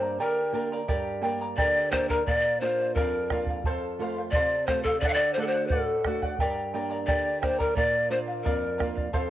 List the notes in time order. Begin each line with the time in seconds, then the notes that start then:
Already playing: G2 A#3 D4 G4 C5
0.02 A#4 D5 A#5
0.18 D3 G4 A#4 D5 G5 A#5
0.52 A#3 D4 G4 A#4 D5 G5 A#5
0.72 A#4 D5 A#5
0.88 G2 G4 A#4 D5 G5 A#5, bombo low
1.21 A#3 D4 G4 A#4 D5 G5 A#5
1.41 A#4 D5 A#5
1.57 D3 G4 A#4 D5 G5 A#5, bombo low
1.91 A#3 D4 G4 A#4 C5 D5 G5 A#5, bombo rim, bombo low
2.09 A#4 D5 A#5, bombo low
2.26 A#2 A#4 D5 F5, bombo low
2.61 A#3 D4 F4 A#4 C5 D5 F5
2.80 D5 F5
2.95 F2 A#4 D5 F5, bombo low
3.30 A#3 D4 F4 A#4 D5 F5, bombo rim, bombo low
3.46 D5 F5, bombo low
3.64 F2 A4 C5 F5, bombo low
3.99 A3 C4 F4 A4 C5 F5
4.18 C5 F5
4.31 C3 A4 D5, bombo low
4.36 C5 F5
4.67 A3 C4 F4 A4 C5 F5, bombo rim, bombo low
4.83 A4 F5, bombo low
4.88 C5
5.00 D3 A4 D5, bombo low
5.05 F5 F#5
5.14 D5
5.34 A3 C5
5.38 D4 F#4 A4 D5 F#5
5.47 C5
5.54 D5 F#5
5.67 A2 A4, bombo low
5.72 D5 F#5
6.05 A3 D4 F#4 A4 D5 F#5, bombo rim, bombo low
6.22 D5 F#5, bombo low
6.39 G2 G4 A#4 D5 G5 A#5, bombo low
6.74 A#3 D4 G4 A#4 D5 G5 A#5
6.90 A#4 D5 A#5
7.07 D3 G4 A#4 D5 G5 A#5, bombo low
7.42 A#3 D4 G4 A#4 C5 D5 G5 A#5, bombo rim, bombo low
7.59 A#4 D5 A#5, bombo low
7.75 A#2 A#4 D5 F5, bombo low
8.10 A#3 D4 F4 A#4 C5 D5 F5
8.28 D5 F5
8.43 F2 A#4 D5 F5, bombo low
8.78 A#3 D4 F4 A#4 D5 F5, bombo rim, bombo low
8.95 D5 F5, bombo low
9.13 F2 A4 C5 F5, bombo low